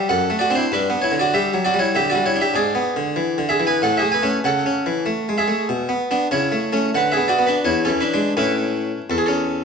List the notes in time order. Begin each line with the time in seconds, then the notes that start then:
0.09 F#2 A4 F#5
0.30 A3
0.39 F#4 D5
0.50 C4 D4
0.55 E4 C5
0.72 G2 D4 B4
0.90 B3
1.02 E4 C#5
1.11 D3
1.19 F#4 D5
1.34 G3 G4 E5
1.54 F#3
1.65 F#4 D5
1.74 G3
1.79 E4 C#5
1.95 D3 G4 E5
2.10 F#4 D5
2.15 G3
2.26 E4 C#5
2.36 D4
2.41 G4 E5
2.54 G#2 G#4 D5
2.75 B3
2.96 D3
3.16 E3
3.38 D3
3.49 G#4 E5
3.60 E3
3.67 B4 G#5
3.82 A2 A4 F#5
3.97 G#4 E5
4.02 A3
4.12 B4 G#5
4.22 A3 C#4
4.44 C#3 A4 F#5
4.66 C#4
4.86 E3
5.06 A3
5.29 G#3
5.38 G#4 E5
5.48 A3
5.69 B2
5.89 B3
6.11 B3 D4
6.31 C#3 E4 C#5
6.52 A3
6.73 A3 C#4
6.95 D3 B4 F#5
7.12 G#4 E5
7.17 B3
7.28 F#4 D5
7.39 B3
7.47 D4 B4
7.65 E2 E4 C#5
7.85 E3 C#4 A4
8.01 D4 B4
8.14 G#3 D4
8.37 A2 A3 C#4 E4 B4
9.10 E2 A4
9.18 G#4
9.26 C#4 A4